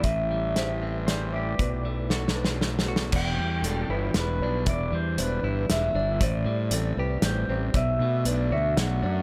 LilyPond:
<<
  \new Staff \with { instrumentName = "Electric slide guitar" } { \time 3/4 \key e \minor \tempo 4 = 117 e''2 c''8 d''8~ | d''2 r4 | g''2 b'4 | d''8 c''8 b'4 e''4 |
d''2 c''4 | e''4 d''8 e''8 fis''4 | }
  \new Staff \with { instrumentName = "Felt piano" } { \time 3/4 \key e \minor r4 c''8 e''8 d''8 e''8 | b'4 a'8 b'4 a'8 | d''4 a'8 b'4 d''8 | e''4 c''8 d''4 d''8 |
c''4 a'8 b'4 c''8 | d''4 b'8 d''4 d''8 | }
  \new Staff \with { instrumentName = "Ambient pad" } { \time 3/4 \key e \minor <a e' b' c'' g''>2. | <b fis' a' d'' b''>2. | r2. | r2. |
r2. | r2. | }
  \new Staff \with { instrumentName = "Clean electric guitar" } { \time 3/4 \key e \minor a,8 g8 g'8 c'8 g8 g'8 | b,8 a8 fis'8 d'8 a8 fis'8 | e,8 g8 d'8 e'8 g8 d'8 | e,8 g8 d'8 e'8 g8 d'8 |
a,8 g8 c'8 g'8 g8 c'8 | b,8 a8 d'8 fis'8 a8 d'8 | }
  \new Staff \with { instrumentName = "Fingered electric bass" } { \clef bass \time 3/4 \key e \minor a,,2. | b,,2. | e,,8 e,8 e,,8 g,,8 e,,8 b,,8 | e,,8 e,8 e,,8 g,,8 e,,8 g,,8 |
a,,8 a,8 a,,8 c,8 a,,8 a,,8 | b,,8 b,8 b,,8 d,8 b,,8 fis,8 | }
  \new DrumStaff \with { instrumentName = "Drums" } \drummode { \time 3/4 <hh bd>4 <hh sn>4 <hh sn>4 | <hh bd>4 \tuplet 3/2 { sn8 sn8 sn8 sn8 sn8 sn8 } | <cymc bd>4 hh4 <hh sn>4 | <hh bd>4 hh4 <hh sn>4 |
<hh bd>4 hh4 <hh sn>4 | <hh bd>4 hh4 <hh sn>4 | }
>>